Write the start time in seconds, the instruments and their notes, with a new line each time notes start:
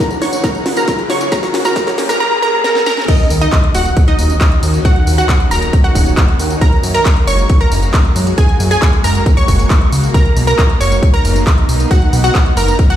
Already playing: ambient pad F#2 C#3 A#3 G#4 F#5, synth pluck A#4 A#5, riser
0.11 synth arpeggio sound G#4, closed hi-hat, tambourine
0.22 synth arpeggio sound C#4, synth pluck C#5 C#6, snare, open hi-hat
0.33 synth arpeggio sound C#5, closed hi-hat, tambourine
0.44 synth arpeggio sound C#4, synth pluck A#4 A#5, kick, snare, closed hi-hat, tambourine
0.55 synth arpeggio sound C#5, closed hi-hat, tambourine
0.66 synth arpeggio sound C#4, snare, open hi-hat
0.77 synth arpeggio sound F#4, synth pluck A#4 A#5, closed hi-hat, tambourine
0.88 synth arpeggio sound C#4, kick, snare, closed hi-hat, tambourine
0.99 synth arpeggio sound G#4, closed hi-hat, tambourine
1.10 synth arpeggio sound C#4, synth pluck C#5 C#6, snare, open hi-hat
1.21 synth arpeggio sound C#5, closed hi-hat, tambourine
1.32 synth arpeggio sound C#4, ambient pad F#4, synth pluck A#4 A#5, kick, snare, closed hi-hat, tambourine
1.43 synth arpeggio sound C#5, snare, closed hi-hat, tambourine
1.54 synth arpeggio sound C#4, snare, open hi-hat
1.65 synth arpeggio sound F#4, synth pluck A#4 A#5, snare, closed hi-hat, tambourine
1.76 synth arpeggio sound C#4, synth pluck A#4 A#5, kick, snare, closed hi-hat, tambourine
1.87 synth arpeggio sound C#5, snare, closed hi-hat, tambourine
1.98 synth arpeggio sound C#4, snare, open hi-hat
2.09 synth arpeggio sound F#4, synth pluck A#4 A#5, snare, closed hi-hat, tambourine
2.20 synth pluck A#4 A#5
2.42 synth pluck A#4 A#5
2.64 synth pluck A#4 A#5, snare
2.75 snare
2.86 synth pluck A#4 A#5, snare
2.97 snare
3.08 ambient pad D#3 A#3 C#4 D#4 F#4, synth pluck D#4 D#5, supersaw synth D#5, kick, closed hi-hat, crash, tambourine, impact
3.19 closed hi-hat
3.30 analog synth bass D#2, open hi-hat, tambourine
3.41 synth pluck D#4 D#5, supersaw synth D#5, closed hi-hat, tambourine
3.52 kick, clap, closed hi-hat, tambourine
3.64 closed hi-hat
3.74 analog synth bass D#1, synth pluck F#4 F#5, supersaw synth F#5, open hi-hat, tambourine
3.85 closed hi-hat, tambourine
3.97 kick, closed hi-hat, tambourine
4.08 synth pluck D#4 D#5, supersaw synth D#5, closed hi-hat
4.19 analog synth bass D#1, open hi-hat, tambourine
4.30 closed hi-hat, tambourine
4.41 kick, clap, closed hi-hat, tambourine
4.52 closed hi-hat
4.63 analog synth bass D#2, open hi-hat, tambourine
4.74 tambourine
4.85 synth pluck F#4 F#5, supersaw synth F#5, kick, closed hi-hat, tambourine
4.96 closed hi-hat
5.07 analog synth bass D#2, open hi-hat, tambourine
5.18 synth pluck F#4 F#5, supersaw synth F#5, tambourine
5.29 kick, clap, closed hi-hat, tambourine
5.40 closed hi-hat
5.51 analog synth bass D#1, synth pluck A#4 A#5, supersaw synth A#5, open hi-hat, tambourine
5.62 closed hi-hat, tambourine
5.73 kick, closed hi-hat, tambourine
5.84 synth pluck F#4 F#5, supersaw synth F#5, closed hi-hat
5.95 analog synth bass D#1, kick, open hi-hat, tambourine
6.06 closed hi-hat, tambourine
6.17 kick, clap, closed hi-hat, tambourine
6.28 closed hi-hat
6.39 analog synth bass D#2, open hi-hat, tambourine
6.50 closed hi-hat, tambourine
6.61 ambient pad G#3 F#4, synth pluck A#4 A#5, supersaw synth A#5, kick, closed hi-hat, tambourine
6.72 closed hi-hat
6.83 analog synth bass F#2, open hi-hat, tambourine
6.94 synth pluck A#4 A#5, supersaw synth A#5, tambourine
7.05 kick, clap, closed hi-hat, tambourine
7.17 closed hi-hat
7.27 analog synth bass F#1, synth pluck C#5 C#6, supersaw synth C#6, open hi-hat, tambourine
7.39 closed hi-hat, tambourine
7.50 kick, closed hi-hat, tambourine
7.61 synth pluck A#4 A#5, supersaw synth A#5, closed hi-hat
7.72 analog synth bass F#1, open hi-hat, tambourine
7.83 closed hi-hat, tambourine
7.94 kick, clap, closed hi-hat, tambourine
8.05 closed hi-hat
8.16 analog synth bass F#2, open hi-hat, tambourine
8.27 closed hi-hat, tambourine
8.38 synth pluck G#4 G#5, supersaw synth G#5, kick, closed hi-hat, tambourine
8.49 closed hi-hat
8.60 analog synth bass F#2, open hi-hat, tambourine
8.71 synth pluck G#4 G#5, supersaw synth G#5, tambourine
8.82 kick, clap, closed hi-hat, tambourine
8.93 closed hi-hat
9.04 analog synth bass F#1, synth pluck A#4 A#5, supersaw synth A#5, open hi-hat, tambourine
9.15 closed hi-hat, tambourine
9.26 kick, closed hi-hat, tambourine
9.37 synth pluck C#5 C#6, supersaw synth C#6, closed hi-hat
9.48 analog synth bass F#1, kick, open hi-hat, tambourine
9.59 closed hi-hat, tambourine
9.70 kick, clap, closed hi-hat, tambourine
9.81 closed hi-hat
9.92 analog synth bass C#2, open hi-hat, tambourine
10.04 tambourine
10.14 ambient pad B3 D#4, synth pluck A#4 A#5, supersaw synth A#5, kick, closed hi-hat, tambourine
10.26 closed hi-hat
10.36 analog synth bass B1, open hi-hat, tambourine
10.47 synth pluck A#4 A#5, supersaw synth A#5, tambourine
10.58 kick, clap, closed hi-hat, tambourine
10.70 closed hi-hat
10.81 analog synth bass F#1, synth pluck C#5 C#6, supersaw synth C#6, open hi-hat, tambourine
10.92 closed hi-hat, tambourine
11.03 kick, closed hi-hat, tambourine
11.14 synth pluck A#4 A#5, supersaw synth A#5, closed hi-hat
11.25 analog synth bass F#1, open hi-hat, tambourine
11.36 closed hi-hat, tambourine
11.47 kick, clap, closed hi-hat, tambourine
11.58 closed hi-hat
11.69 analog synth bass B1, open hi-hat, tambourine
11.80 closed hi-hat, tambourine
11.91 synth pluck F#4 F#5, supersaw synth F#5, kick, closed hi-hat, tambourine
12.02 closed hi-hat
12.13 analog synth bass B1, open hi-hat, tambourine
12.24 synth pluck F#4 F#5, supersaw synth F#5, tambourine
12.35 kick, clap, closed hi-hat, tambourine
12.46 closed hi-hat
12.57 analog synth bass F#1, synth pluck A#4 A#5, supersaw synth A#5, open hi-hat, tambourine
12.68 closed hi-hat, tambourine
12.79 kick, closed hi-hat, tambourine
12.90 synth pluck F#4 F#5, supersaw synth F#5, closed hi-hat